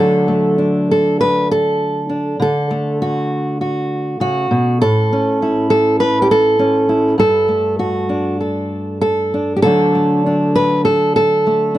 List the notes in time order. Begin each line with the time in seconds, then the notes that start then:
Already playing: D3 F#3 A3 A4
0.00 D4
0.28 A3
0.58 D4
0.91 A4
1.21 B4
1.51 A4
2.09 D4
2.40 D3 A4
2.71 A3
3.02 F#4
3.61 F#4
4.20 C#3 F#4
4.51 B2
4.82 A2 A4
5.13 C#4
5.42 E4
5.70 A4
6.00 B4
6.22 G4
6.31 A4
6.59 C#4
6.89 E4
7.18 G2 A4
7.48 A3
7.79 F#4
8.09 D4
8.41 A4
9.01 A4
9.34 D4
9.56 G4
9.62 D3 F#3 A3 A4
9.66 D4
9.95 A3
10.26 D4
10.55 B4
10.85 A4
11.16 A4
11.47 A3
11.75 D4